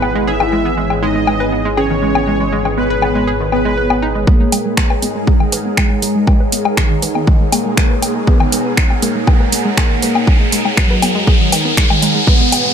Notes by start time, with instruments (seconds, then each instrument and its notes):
Already playing: detuned saw bass G#1, analog synth pad E3 B3 F#4 G#4, analog synth lead B3, ambient pad G#4 C#5 F#5, supersaw synth B4
0.02 synth arpeggio sound B3, low woodblock
0.15 synth arpeggio sound G#3
0.27 analog synth lead E4, synth arpeggio sound G#4, supersaw synth E5
0.40 synth arpeggio sound D#3, low woodblock
0.52 synth arpeggio sound G#3
0.65 synth arpeggio sound B3
0.77 synth arpeggio sound G#3
0.90 synth arpeggio sound G#3, low woodblock
1.00 synth arpeggio sound G#3, analog synth lead D#4, supersaw synth D#5, ambient pad G#5
1.15 synth arpeggio sound G#3
1.27 synth arpeggio sound G#3, low woodblock
1.40 synth arpeggio sound B4
1.52 synth arpeggio sound B3
1.65 synth arpeggio sound G#3
1.77 analog synth lead C#4, synth arpeggio sound G#4, supersaw synth C#5, low woodblock
1.90 synth arpeggio sound D#3
2.02 synth arpeggio sound G#3
2.15 synth arpeggio sound B3, low woodblock
2.27 synth arpeggio sound G#3
2.40 synth arpeggio sound G#3
2.52 synth arpeggio sound G#3
2.65 synth arpeggio sound G#3, low woodblock
2.77 synth arpeggio sound G#3, analog synth lead B3, supersaw synth B4
2.90 synth arpeggio sound B4
3.02 synth arpeggio sound B3, low woodblock
3.15 synth arpeggio sound G#3
3.27 synth arpeggio sound G#4
3.40 synth arpeggio sound D#3
3.52 analog synth lead B3, synth arpeggio sound B3, supersaw synth B4, low woodblock
3.65 synth arpeggio sound G#3
3.78 synth arpeggio sound B4
3.90 synth arpeggio sound B3, low woodblock
4.02 synth arpeggio sound D#4
4.15 synth arpeggio sound G#3
4.27 analog synth pad G#3 D#4 G#4 A#4, synth arpeggio sound G#3, analog synth lead A#3, kick, riser
4.40 synth arpeggio sound G#3
4.52 synth arpeggio sound G#3, open hi-hat, low woodblock
4.65 synth arpeggio sound G#3
4.72 ambient pad F#5
4.77 synth arpeggio sound G#3, finger snap, kick, low conga
4.90 synth arpeggio sound B4, low woodblock
5.02 analog synth lead G#3, synth arpeggio sound B3, open hi-hat
5.15 synth arpeggio sound G#3
5.27 synth arpeggio sound G#4, kick
5.40 synth arpeggio sound D#3, low woodblock
5.52 synth arpeggio sound G#3, open hi-hat, low conga
5.65 synth arpeggio sound B3
5.77 analog synth lead G#3, synth arpeggio sound G#3, finger snap, kick, low woodblock
5.90 synth arpeggio sound G#3
6.02 synth arpeggio sound G#3, open hi-hat
6.15 synth arpeggio sound G#3
6.27 synth arpeggio sound G#3, kick, low conga, low woodblock
6.40 synth arpeggio sound B4
6.52 synth arpeggio sound B3, open hi-hat
6.65 synth arpeggio sound G#3, low woodblock
6.77 analog synth lead D#3, synth arpeggio sound G#4, finger snap, kick
6.90 synth arpeggio sound D#3
7.02 synth arpeggio sound G#3, open hi-hat, low conga
7.15 synth arpeggio sound B3, low woodblock
7.27 synth arpeggio sound G#3, kick
7.40 synth arpeggio sound G#3
7.52 synth arpeggio sound G#3, analog synth lead A#3, open hi-hat, low woodblock
7.65 synth arpeggio sound G#3
7.77 synth arpeggio sound G#3, finger snap, kick, low conga
7.90 synth arpeggio sound B4
8.02 synth arpeggio sound B3, open hi-hat, low woodblock
8.15 synth arpeggio sound G#3
8.27 analog synth lead B3, synth arpeggio sound G#4, kick
8.40 synth arpeggio sound D#3, low woodblock
8.52 synth arpeggio sound G#3, open hi-hat, low conga
8.65 synth arpeggio sound B3
8.77 finger snap, kick
8.90 synth arpeggio sound G#3, low woodblock
9.02 synth arpeggio sound G#3, analog synth lead A#3, open hi-hat
9.15 synth arpeggio sound G#3
9.27 synth arpeggio sound G#3, kick, low conga, low woodblock
9.40 synth arpeggio sound B4
9.52 synth arpeggio sound B3, open hi-hat
9.65 synth arpeggio sound G#3
9.77 analog synth lead A#3, synth arpeggio sound G#4, finger snap, kick, low woodblock
9.90 synth arpeggio sound D#3
10.02 synth arpeggio sound G#3, open hi-hat, low conga
10.15 synth arpeggio sound B3, low woodblock
10.27 synth arpeggio sound G#3, kick
10.40 synth arpeggio sound G#3
10.52 synth arpeggio sound G#3, open hi-hat
10.65 synth arpeggio sound G#3, low woodblock
10.77 analog synth lead F#3, synth arpeggio sound G#3, finger snap, kick, low conga
10.90 synth arpeggio sound B4
11.02 synth arpeggio sound B3, open hi-hat, low woodblock
11.15 synth arpeggio sound G#3
11.27 synth arpeggio sound G#4, kick
11.40 synth arpeggio sound D#3
11.52 analog synth lead D#3, synth arpeggio sound G#3, open hi-hat, low conga, low woodblock
11.65 synth arpeggio sound B3
11.77 synth arpeggio sound G#3, finger snap, kick
11.90 synth arpeggio sound G#3, low woodblock
12.02 synth arpeggio sound G#3, open hi-hat
12.15 synth arpeggio sound G#3
12.27 analog synth pad G#2 E3 B3 F#4 G#4, synth arpeggio sound G#3, analog synth lead B3, kick
12.40 synth arpeggio sound G#3
12.52 synth arpeggio sound G#3, open hi-hat, low woodblock
12.65 synth arpeggio sound G#3